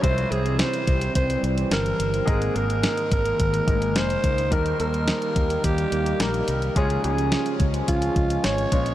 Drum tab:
HH |xxxxxxxxxxxxxxxx|xxxxxxxxxxxxxxxx|xxxxxxxxxxxxxxxx|xxxxxxxxxxxxxxxx|
SD |----o-------o---|----o-------o---|----o-------o---|----o-------o---|
BD |o-----o-o-------|o-----o-o-o---o-|o-----o-o-------|o-----o-o-o---o-|